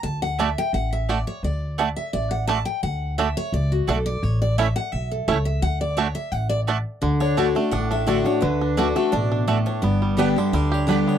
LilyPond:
<<
  \new Staff \with { instrumentName = "Steel-string acoustic guitar" } { \time 4/4 \key d \major \tempo 4 = 172 r1 | r1 | r1 | r1 |
r1 | r8 cis''4 d''8 fis''8 e''8 d''8 cis''8 | b'4. a'8 d''4 r8 cis''8 | d''4 g''8 e''8 d''8 cis''8 d''8 cis''8 | }
  \new Staff \with { instrumentName = "Mandolin" } { \time 4/4 \key d \major r4 <a fis' d'' a''>16 r4. r16 <a fis' d'' a''>16 r8. | r4 <a fis' d'' a''>16 r4. r16 <a fis' d'' a''>16 r8. | r4 <a fis' d'' a''>16 r4. r16 <a fis' d'' a''>16 r8. | r4 <a e' cis'' a''>16 r4. r16 <a e' cis'' a''>16 r8. |
r4 <a fis' d'' a''>16 r4. r16 <a fis' d'' a''>16 r8. | r4 <a fis' d'' a''>16 r4. r16 <a fis' d'' a''>16 r8. | r4 <a fis' d'' a''>16 r4. r16 <a fis' d'' a''>16 r8. | r4 <b g' d'' g''>16 r4. r16 <b g' d'' g''>16 r8. | }
  \new Staff \with { instrumentName = "Steel-string acoustic guitar" } { \time 4/4 \key d \major << { a''8 fis''8 e''8 g''8 fis''8 e''8 d''8 cis''8 | d''4 r8 e''8 d''8 fis''8 a''8 g''8 | fis''4 e''8 cis''8 d''8 fis'8 a'8 d''8 | cis''8 d''8 e''8 fis''8 e''8 a'8 cis''8 e''8 |
fis''8 d''8 cis''8 e''8 fis''8 d''8 r4 | r4 <d a d' fis'>8 <d' fis'>8 r4 <d a d' fis'>8 <d' fis'>8 | r4 <d a d' fis'>8 <d' fis'>8 r2 | r4 <d g b g'>8 <b g'>8 r4 <d g b g'>4 | } \\ { r1 | r1 | r1 | r1 |
r1 | d2 a,2 | d2 b,4 a,4 | g,2 d2 | } >> }
  \new Staff \with { instrumentName = "Five-string banjo" } { \time 4/4 \key d \major r4 <a d'>8 r4. <a d'>8 r8 | r4 <a d'>8 r4. <a d'>8 r8 | r4 <a d'>8 r4. <a d'>8 r8 | r4 <a cis' e'>8 r4. <a cis' e'>8 r8 |
r4 <a d'>8 r4. <a d'>8 r8 | d8 d'8 d'8 a8 d'8 d'8 a8 d'8 | d8 d'8 d'8 a8 d'8 d'8 a8 d'8 | b8 g8 d'8 d8 g8 g'8 d'8 b8 | }
  \new Staff \with { instrumentName = "Upright bass" } { \clef bass \time 4/4 \key d \major d,2 a,,2 | d,2 a,,2 | d,2 cis,4 b,,4 | a,,2 b,,4 cis,4 |
d,2 a,,2 | d,2 a,,2 | d,2 a,,2 | g,,2 d,2 | }
>>